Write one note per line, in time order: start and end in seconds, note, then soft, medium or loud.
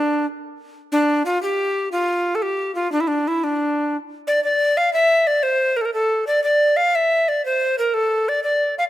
0.00 0.25 D4 medium
0.92 1.22 D4 loud
1.26 1.40 F4 medium
1.42 1.89 G4 loud
1.92 2.37 F4 medium
2.35 2.44 A4 medium
2.42 2.74 G4 loud
2.75 2.91 F4 medium
2.92 3.02 D4 medium
3.00 3.09 E4 medium
3.07 3.29 D4 medium
3.27 3.45 E4 medium
3.44 3.96 D4 medium
4.27 4.42 D5 medium
4.44 4.79 D5 loud
4.77 4.93 F5 medium
4.93 5.28 E5 loud
5.27 5.44 D5 medium
5.43 5.78 C5 medium
5.76 5.83 A#4 medium
5.81 5.87 A4 medium
5.85 5.93 A#4 medium
5.94 6.25 A4 medium
6.27 6.43 D5 medium
6.43 6.78 D5 medium
6.76 6.97 F5 medium
6.95 7.30 E5 medium
7.28 7.45 D5 medium
7.45 7.76 C5 medium
7.78 7.95 A#4 medium
7.94 8.30 A4 medium
8.28 8.43 D5 medium
8.44 8.75 D5 medium
8.78 8.84 F5 medium